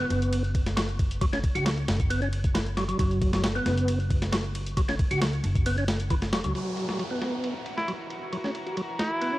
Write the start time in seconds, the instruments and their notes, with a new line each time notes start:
0.00 tonewheel organ B3
0.10 upright bass F#1, ride
0.22 closed hi-hat
0.33 closed hi-hat, ride
0.44 closed hi-hat
0.55 kick, ride
0.66 snare, closed hi-hat
0.77 tonewheel organ F#3, snare, closed hi-hat, ride
0.89 closed hi-hat
0.99 kick, ride
1.11 closed hi-hat
1.21 tonewheel organ F#3, kick, closed hi-hat, ride
1.33 tonewheel organ C#4, snare, closed hi-hat
1.44 kick, ride
1.55 upright bass C#2, tonewheel organ F#4, closed hi-hat, ride
1.66 tonewheel organ F#3, snare, closed hi-hat, ride
1.78 closed hi-hat
1.88 upright bass F#1, snare, ride
2.00 kick, closed hi-hat
2.10 tonewheel organ B3, closed hi-hat, ride
2.22 tonewheel organ C#4, closed hi-hat
2.33 ride
2.44 kick, closed hi-hat
2.55 tonewheel organ E3, snare, closed hi-hat, ride
2.66 closed hi-hat
2.77 tonewheel organ F#3, snare, ride
2.89 tonewheel organ F#3, closed hi-hat
2.99 upright bass F#1, tonewheel organ F#3, kick, closed hi-hat, ride
3.11 closed hi-hat
3.22 kick, ride
3.33 tonewheel organ F#3, snare, closed hi-hat
3.44 tonewheel organ F#3, snare, closed hi-hat, ride
3.55 tonewheel organ B3, closed hi-hat
3.66 upright bass F#1, snare, ride
3.78 closed hi-hat
3.88 closed hi-hat, ride
4.00 closed hi-hat
4.10 kick, ride
4.22 snare, closed hi-hat
4.32 tonewheel organ F#3, snare, closed hi-hat, ride
4.44 closed hi-hat
4.55 ride
4.66 closed hi-hat
4.77 tonewheel organ F#3, kick, closed hi-hat, ride
4.88 tonewheel organ C#4, snare, closed hi-hat
4.99 kick, ride
5.11 upright bass C#2, tonewheel organ F#4, closed hi-hat, ride
5.22 tonewheel organ F#3, snare, closed hi-hat, ride
5.33 closed hi-hat
5.43 upright bass F#1, ride
5.55 kick, closed hi-hat
5.66 tonewheel organ B3, closed hi-hat, ride
5.78 tonewheel organ C#4, closed hi-hat
5.88 snare, ride
6.00 closed hi-hat
6.10 tonewheel organ E3, kick, closed hi-hat, ride
6.22 snare, closed hi-hat
6.33 upright bass E1, tonewheel organ F#3, snare, ride
6.44 upright bass C#2, tonewheel organ F#3, closed hi-hat
6.55 string section E3 F#4 A#4, tonewheel organ F#3, ride, downlifter
6.77 ride
6.89 tonewheel organ F#3, snare
6.99 tonewheel organ F#3, ride
7.11 tonewheel organ B3
7.22 snare, ride
7.44 ride
7.66 ride
7.77 alto saxophone E4, snare
7.88 tonewheel organ F#3, ride
8.10 ride
8.32 tonewheel organ F#3, ride
8.44 tonewheel organ C#4, snare
8.55 ride
8.66 tonewheel organ F#4, ride
8.77 tonewheel organ F#3, ride
8.99 alto saxophone E4, snare, ride
9.21 tonewheel organ B3, ride
9.33 tonewheel organ C#4